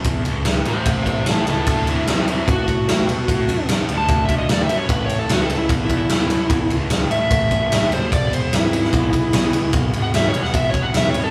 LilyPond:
<<
  \new Staff \with { instrumentName = "Electric slide guitar" } { \time 4/4 \key a \major \tempo 4 = 149 r4. <g' c''>8 <g' c''>8 <g' c''>8 <e' a'>8 <e' a'>8 | <e' a'>8 <c' e'>8 <c' e'>8 <c' e'>8 fis'2~ | fis'4 \tuplet 3/2 { r4 a''8~ a''8 e''8 dis''8 d''8 e''8 cis''8 } | \tuplet 3/2 { b'8 cis''8 a'8 fis'8 a'8 e'8 r8 e'8 e'8~ } e'4~ |
e'8 r4 e''2 c''8 | d''8 c''8 e'2. | \tuplet 3/2 { r4 fis''8 e''8 cis''8 fis''8 e''8 cis''8 fis''8 e''8 cis''8 a'8 } | }
  \new Staff \with { instrumentName = "Tonewheel organ" } { \time 4/4 \key a \major <a cis' e' a'>1 | <a d' fis' a'>1~ | <a d' fis' a'>1 | <a cis' e' a'>1~ |
<a cis' e' a'>1 | \tuplet 3/2 { <a c' f' a'>8 <gis b e' gis'>4~ } <gis b e' gis'>2.~ | <gis b e' gis'>1 | }
  \new Staff \with { instrumentName = "Picked electric bass" } { \clef bass \time 4/4 \key a \major e,8 cis,8 cis,8 a,,8 a,,8 a,,8 a,,8 cis,8 | d,4 fis,4 a,8 a,8 a,8 b,8 | a,8 fis,8 fis,8 d,8 d,8 d,8 d,8 fis,8 | a,,4 cis,4 e,8 e,8 e,8 fis,8 |
e,8 cis,8 cis,8 a,,8 a,,8 a,,8 a,,8 fis,,8 | e,,4 gis,,4 b,,8 b,,8 b,,8 cis,8 | b,,8 gis,,8 gis,,8 e,,8 e,,8 e,,8 e,,8 gis,,8 | }
  \new DrumStaff \with { instrumentName = "Drums" } \drummode { \time 4/4 <bd cymr>8 cymr8 <cymr sn>8 cymr8 <bd cymr>8 <bd cymr>8 <cymr sn>8 cymr8 | <bd cymr>8 cymr8 <cymr sn>8 cymr8 <bd cymr>8 <bd cymr>8 <cymr sn>8 cymr8 | <bd cymr>8 cymr8 <cymr sn>8 cymr8 <bd cymr>8 <bd cymr>8 <cymr sn>8 cymr8 | <bd cymr>8 cymr8 <cymr sn>8 cymr8 <bd cymr>8 <bd cymr>8 <cymr sn>8 cymr8 |
<bd cymr>8 cymr8 <cymr sn>8 cymr8 <bd cymr>8 <bd cymr>8 <cymr sn>8 cymr8 | <bd cymr>8 cymr8 <cymr sn>8 cymr16 sn16 <bd cymr>8 <bd cymr>8 <cymr sn>8 cymr8 | <bd cymr>8 cymr8 <cymr sn>8 cymr16 sn16 <bd cymr>8 <bd cymr>8 <cymr sn>8 cymr8 | }
>>